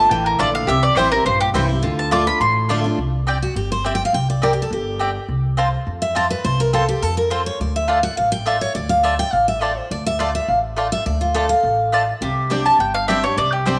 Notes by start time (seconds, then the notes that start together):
Already playing: F4 G4 A5
0.00 D4
0.10 A1 E3 G5
0.26 A#4
0.39 A#1 D3 A3 F4 D5 A5
0.55 F5
0.67 C2 C3 G4 E5
0.83 D5
0.96 A1 E3 G3 C4 E4 C5 G5
1.12 C4 E4 A#4
1.25 A#1 G2 C5
1.41 G4
1.54 C2 E3 G3 C4 E4 C5 G5
1.69 C4 E4
1.82 D2 D3 F4
1.99 A5
2.11 D3 A3 D4 F4 D5 A5 D6
2.27 D4 F4 B5
2.40 A1 A2 C6
2.69 D3 A3 D4 F4 D5 A5
2.84 D4 F4
2.98 C2
3.27 C4 G4 D5 G5
3.42 F#4
3.56 G1 G4
3.72 C5
3.84 C4 G4 D5 E5 G5
3.95 G5
4.05 F5
4.13 C2 G5
4.30 D5
4.42 C4 G4 A#4 D5 G5
4.53 G4
4.62 A4
4.71 G1 G4
4.99 C4 G4 D5 G5
5.28 C2
5.57 C4 F4 C5 A5
5.87 F2
6.02 E5
6.15 C4 F4 C5 D5 A5
6.30 B4
6.44 C2 C5
6.60 A#4
6.73 C4 F4 A4 C5 A5
6.88 G4
7.02 F2 A4
7.17 A#4
7.30 C4 F4 C5 A5
7.46 C#5
7.60 D2 D5
7.76 E5
7.88 A3 F4 D5 F5 A5
8.03 F#5
8.17 A1 F5
8.32 G5
8.46 A3 F4 D5 E5 A5
8.61 C#5
8.75 D2 D5
8.89 F5
9.03 A3 F4 D5 E5 A5
9.19 G5
9.33 A1 F5
9.48 E5
9.61 A3 F4 D5 A5
9.77 C5
9.91 D2 D5
10.06 E5
10.19 A3 F4 D5 A5
10.35 E5
10.48 A1 F5
10.76 A3 F4 D5 A5
10.92 E5
11.06 D2 D5
11.21 F4
11.34 A3 F4 A4 D5 A5
11.49 F5
11.63 A1
11.92 A3 F4 D5 A5
12.21 C2 C3 G4
12.50 G3 C4 D4 G4 D5 G5
12.65 D4 G4 A5
12.79 G1 G2 G5
12.94 F5
13.08 G3 C4 D4 G4 D5 E5 G5
13.24 D4 G4 C#5
13.37 C2 C3 D5
13.53 G4
13.66 G3 C4 D4 G4 C5 D5 G5